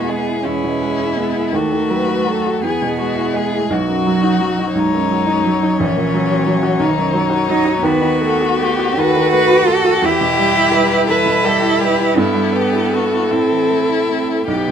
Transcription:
Already playing: grand piano E2 B2 G#3 E4, cello B3, violin F#4 G#4
0.09 grand piano G#3, violin G#4
0.28 grand piano E4
0.44 grand piano E2, cello C#4, violin E4 G#4
0.64 grand piano B2
0.82 grand piano G#3
1.00 grand piano E4
1.17 grand piano G#3, cello B3
1.35 grand piano E4
1.53 grand piano D#2, cello A3, violin F#4 A4
1.72 grand piano D#3
1.90 grand piano F#3, violin B4
2.07 grand piano F#4
2.27 grand piano F#3, violin A4
2.46 grand piano F#4
2.61 grand piano E2, cello B3, violin G#4
2.82 grand piano B2
2.98 grand piano G#3, violin F#4
3.15 grand piano E4
3.33 grand piano G#3, violin G#4
3.52 grand piano E4
3.70 grand piano B1, cello F#3, violin F#4
3.88 grand piano F#2
4.07 grand piano F#3
4.23 grand piano D#4
4.40 grand piano F#3
4.59 grand piano D#4
4.75 grand piano B1, cello G#3, violin D#4 C#5
4.94 grand piano F#2
5.11 grand piano F#3
5.27 grand piano D#4
5.44 cello F#3, grand piano F#3
5.63 grand piano D#4
5.78 grand piano A#1, cello E3, violin C#4
5.97 grand piano A#2
6.14 grand piano F#3
6.32 grand piano F#4
6.46 grand piano F#3
6.63 grand piano F#4
6.79 grand piano B1, cello D#3, violin D#4
6.97 grand piano F#2
7.13 grand piano F#3
7.30 grand piano F#4
7.47 grand piano F#3, cello D#4
7.65 grand piano F#4
7.83 grand piano D#2, cello B3, violin F#4 B4
8.02 grand piano D#3
8.21 grand piano A3, violin A4
8.41 grand piano F#4
8.60 grand piano A3, violin G4
8.79 grand piano F#4
8.97 grand piano D#2, cello F#4, violin A4 B4
9.16 grand piano D#3
9.32 grand piano A3, violin B4
9.51 grand piano F#4
9.67 grand piano A3, violin A4
9.84 grand piano F#4
10.02 grand piano E2, cello E4, violin G4
10.21 grand piano B2
10.37 grand piano G3, violin G4
10.56 grand piano E4
10.71 grand piano G3, violin B4
10.92 grand piano E4
11.06 grand piano E2, cello E4, violin A4
11.11 violin B4
11.26 grand piano B2
11.44 grand piano G3, violin G4 A4
11.62 grand piano E4
11.79 grand piano G3, violin G4 B4
11.98 grand piano E4
12.17 grand piano G2, cello B3, violin E4 A4
12.34 grand piano G3
12.52 grand piano B3, violin G4
12.72 grand piano E4
12.92 grand piano B3, violin F#4
13.12 grand piano E4
13.31 grand piano A2, cello C4, violin E4
13.52 grand piano E3
13.70 grand piano A3
13.89 grand piano E4
14.09 grand piano A3, cello C4
14.28 grand piano E4
14.48 grand piano B1, cello B3, violin G4
14.68 grand piano B2

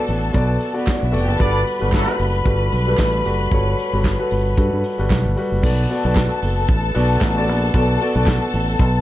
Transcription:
Already playing: grand piano B3 F#4 A4 B4 C#5 D5 E5, string section A4 A5
0.08 fingered electric bass A1, open hi-hat
0.33 fingered electric bass B1, grand piano B3 F#4 A4 D5, kick, closed hi-hat
0.60 open hi-hat
0.73 grand piano B3 F#4 A4 D5
0.78 string section B3 B4
0.86 string section C#4 C#5, kick, snare, clap, closed hi-hat
0.88 clap
0.95 string section D4 D5
1.03 fingered electric bass B1, string section E4 E5
1.11 fingered electric bass F1, grand piano B3 F#4 A4 D5, string section F#4 F#5, open hi-hat
1.22 string section G4 G5
1.28 fingered electric bass F#1, string section A4 A5
1.38 fingered electric bass G1, grand piano G3 F#4 A4 B4, horn section B3 D4 A4 D5, string section B4 B5, kick, closed hi-hat
1.67 open hi-hat
1.79 fingered electric bass G1, horn section F#3 B3 D4 B4, grand piano G3 F#4 A4 B4
1.92 horn section F#3 A3 D4 A4, kick, snare, clap, closed hi-hat
1.94 clap
2.07 grand piano G3 F#4 A4 B4
2.19 fingered electric bass F#1, open hi-hat
2.44 fingered electric bass G1, grand piano G3 F#4 A4 B4, kick, closed hi-hat
2.72 fingered electric bass B1, open hi-hat
2.87 grand piano G3 F#4 A4 B4
2.97 fingered electric bass A1, kick, snare, clap, closed hi-hat
3.00 clap
3.25 fingered electric bass F#1, grand piano G3 F#4 A4 B4, open hi-hat
3.51 fingered electric bass G1, grand piano G3 F#4 A4 C#5, kick, closed hi-hat
3.78 open hi-hat
3.93 fingered electric bass G1, grand piano G3 F#4 A4 B4
4.04 kick, snare, clap, closed hi-hat
4.18 grand piano G3 F#4 A4 B4
4.31 fingered electric bass G1, open hi-hat
4.57 fingered electric bass G2, grand piano G3 F#4 A4 B4, kick, closed hi-hat
4.73 fingered electric bass G2
4.84 open hi-hat
4.98 fingered electric bass G1, grand piano G3 F#4 A4 B4
5.10 fingered electric bass B1, kick, snare, clap, closed hi-hat
5.12 clap
5.25 fingered electric bass G1
5.36 grand piano G3 F#4 A4 B4, open hi-hat
5.52 fingered electric bass F#1
5.63 fingered electric bass B1, grand piano B3 F#4 A4 D5, string section A4 A5, kick, crash
5.89 grand piano B3 F#4 A4 D5, open hi-hat
6.04 fingered electric bass B1, grand piano B3 F#4 A4 D5
6.15 kick, snare, clap, closed hi-hat
6.17 clap
6.42 fingered electric bass F#1, open hi-hat
6.68 fingered electric bass A1, kick, closed hi-hat
6.95 fingered electric bass B1, grand piano B3 F#4 A4 D5, open hi-hat
7.21 fingered electric bass A1, kick, snare, clap, closed hi-hat
7.22 clap
7.36 grand piano B3 F#4 A4 D5
7.48 fingered electric bass A#1, open hi-hat
7.74 fingered electric bass B1, grand piano B3 F#4 A4 D5, kick, closed hi-hat
8.01 grand piano B3 F#4 A4 D5, open hi-hat
8.15 fingered electric bass B1, grand piano B3 F#4 A4 D5
8.26 kick, snare, clap, closed hi-hat
8.28 clap
8.53 fingered electric bass A1, open hi-hat
8.79 fingered electric bass B1, kick, closed hi-hat

